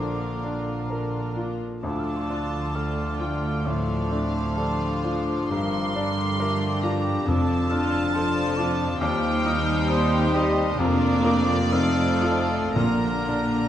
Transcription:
Already playing: double bass section A#1, cello section A#2, grand piano A#2 F3 D4 F4 A#4, bassoon D3, viola section D3 D4, french horn section F3 D4, violin section F4 A#4 F5, cor anglais A#4, flute D6
0.43 grand piano D4
0.90 grand piano A#4
1.36 grand piano F4
1.82 double bass section D2, grand piano D2, cello section D2, viola section D3 D4, french horn section F3 D4, bassoon F3, violin section F4 A4 A5, cor anglais A4, flute D6
1.99 flute F6
2.04 flute D6
2.16 flute C6
2.21 flute D6
2.29 bassoon F3, grand piano D4, viola section F4
2.75 bassoon D3, viola section F3 F4, grand piano A4, violin section A4, cor anglais D5, flute F6
3.20 grand piano F4, violin section G5, flute F6
3.66 grand piano A2, bassoon A3, violin section D4 F5, viola section D4, cor anglais C5, flute D6
4.11 bassoon A3, viola section C4, grand piano D4
4.56 viola section F3 D4, bassoon G3, violin section F4, grand piano A4, flute D6
5.04 bassoon F3, viola section D4, grand piano F4
5.50 double bass section G1, grand piano G2, cello section G2, viola section D#3 C4, bassoon F3, violin section G4 C6, cor anglais A#4
5.95 viola section D3, bassoon G3, grand piano D4
6.39 bassoon A3, viola section D4, violin section F4, cor anglais G4, grand piano A#4
6.83 bassoon G3, violin section D4 A#5, grand piano F4
7.26 double bass section F1, grand piano F2, cello section F2, timpani F2, viola section D3 D4, bassoon F3, french horn section F3 D4, cor anglais A4, violin section A4 A5, flute D6
7.70 grand piano D4, viola section F4, flute F6
8.14 bassoon F3, viola section F3 F4, violin section D4 A4, grand piano A4, cor anglais C5
8.57 grand piano F4, cor anglais D5
9.00 grand piano D#2, cello section D#2, double bass section D#2, viola section G3 D#4, french horn section C4 D#4, violin section G4 C5 G5, cor anglais D5, flute F6
9.46 grand piano D#4
9.89 bassoon G3, grand piano C5, cor anglais C5, flute D#6
10.34 bassoon G3, grand piano G4, violin section D#5
10.78 double bass section F1, timpani F2, grand piano F2, cello section F2, bassoon F3, french horn section A#3 D4, viola section A#3 D4, violin section F4 A#4 D5, cor anglais A#4, flute D6
11.24 grand piano F4 A#4, cor anglais G4
11.72 grand piano F2, bassoon F3, viola section A3 D#4, french horn section A3 D#4, violin section F4 C5, cor anglais A4, flute F6
12.22 grand piano F4 A4
12.75 double bass section A#1, grand piano A#2, timpani A#2, cello section A#2, bassoon D3, viola section A#3 D4, french horn section A#3 D4, violin section F4 A#4 A#5, cor anglais A#4, flute F6
13.28 grand piano D4

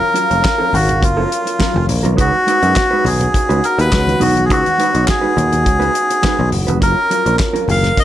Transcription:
Already playing: french horn section F#3 C#4 A#4 F5, melodica A#4
0.14 clean electric guitar F#3 C#4 F4 A#4, closed hi-hat
0.30 picked electric bass F1, clean electric guitar F#3 C#4 F4 C#5, closed hi-hat
0.43 muted clean electric guitar stroke, kick, snare, clap, closed hi-hat
0.58 clean electric guitar F#3 C#4 F4 A#4, muted conga
0.72 picked electric bass G#1, melodica F#4, muted clean electric guitar stroke, open hi-hat, high conga, low conga
0.88 muted clean electric guitar stroke, closed hi-hat, low conga
1.02 picked electric bass F#1, melodica F4, muted clean electric guitar stroke, kick, closed hi-hat, muted conga
1.17 clean electric guitar F#3 C#4 F4 A#4
1.30 muted clean electric guitar stroke, closed hi-hat
1.45 muted clean electric guitar stroke, closed hi-hat
1.59 clean electric guitar F#3 C#4 F4 A#4, kick, snare, clap, closed hi-hat
1.74 picked electric bass F1, muted clean electric guitar stroke, muted conga, high conga
1.87 picked electric bass A#1, muted clean electric guitar stroke, open hi-hat, low conga
2.03 picked electric bass B1, clean electric guitar F#3 C#4 F4 A#4, closed hi-hat, high conga
2.16 picked electric bass C#2, french horn section C#3 B3 D#4 F#4, clean electric guitar G#3 D#4 F#4 B4, melodica F#4, kick, closed hi-hat
2.35 muted conga
2.47 clean electric guitar G#3 D#4 F#4 B4, closed hi-hat
2.61 picked electric bass F#2, clean electric guitar G#3 D#4 B4, closed hi-hat
2.76 muted clean electric guitar stroke, kick, snare, clap, closed hi-hat, muted conga
2.91 clean electric guitar G#3 D#4 F#4 B4
3.05 picked electric bass B1, melodica G#4, open hi-hat, high conga, low conga
3.20 muted clean electric guitar stroke, closed hi-hat, low conga
3.34 muted clean electric guitar stroke, kick, closed hi-hat, muted conga
3.49 picked electric bass C#2, clean electric guitar G#3 D#4 F#4 B4, closed hi-hat, muted conga
3.63 melodica A#4, muted clean electric guitar stroke, closed hi-hat
3.78 picked electric bass D#2, melodica B4, muted clean electric guitar stroke, closed hi-hat
3.92 picked electric bass C#2, kick, snare, clap, closed hi-hat
4.07 muted clean electric guitar stroke, closed hi-hat, muted conga, high conga
4.20 picked electric bass B1, clean electric guitar G#3 D#4 F#4 B4, melodica F#4, open hi-hat, low conga
4.36 muted clean electric guitar stroke, closed hi-hat, high conga
4.45 melodica G#4
4.50 picked electric bass C#2, clean electric guitar G#3 D#4 F#4 B4, melodica F#4, kick, closed hi-hat
4.66 closed hi-hat, high conga
4.78 clean electric guitar G#3 D#4 F#4 B4, closed hi-hat
4.93 picked electric bass B1, clean electric guitar G#3 D#4 F#4 C#5, closed hi-hat
5.07 melodica G#4, muted clean electric guitar stroke, kick, snare, clap, closed hi-hat, muted conga
5.21 clean electric guitar G#3 D#4 F#4 B4, muted conga
5.35 picked electric bass D#2, muted clean electric guitar stroke, closed hi-hat, high conga, low conga
5.51 muted clean electric guitar stroke, closed hi-hat, low conga
5.65 picked electric bass C#2, muted clean electric guitar stroke, kick, closed hi-hat, muted conga
5.79 clean electric guitar G#3 D#4 F#4 B4, closed hi-hat
5.93 muted clean electric guitar stroke, closed hi-hat
6.10 muted clean electric guitar stroke, closed hi-hat
6.23 clean electric guitar G#3 D#4 F#4 B4, kick, snare, clap, closed hi-hat, muted conga
6.38 picked electric bass B1, muted clean electric guitar stroke, muted conga, high conga
6.52 picked electric bass F#1, muted clean electric guitar stroke, open hi-hat, low conga
6.67 picked electric bass F1, clean electric guitar G#3 D#4 F#4 B4, closed hi-hat, high conga
6.81 picked electric bass F#1, clean electric guitar F#3 C#4 F4 A#4, french horn section F#3 C#4 F4 A#4, melodica A#4, kick, closed hi-hat, muted conga
7.10 clean electric guitar F#3 C#4 F4 A#4, closed hi-hat
7.26 picked electric bass A#1, clean electric guitar F#3 C#4 F4 A#4, closed hi-hat
7.38 muted clean electric guitar stroke, kick, snare, clap, closed hi-hat, muted conga
7.53 clean electric guitar F#3 C#4 F4 A#4, closed hi-hat, muted conga
7.67 picked electric bass F#1, melodica F5, muted clean electric guitar stroke, open hi-hat, high conga, low conga
7.83 muted clean electric guitar stroke, snare, closed hi-hat, low conga
7.97 melodica D#5, muted clean electric guitar stroke, kick, closed hi-hat

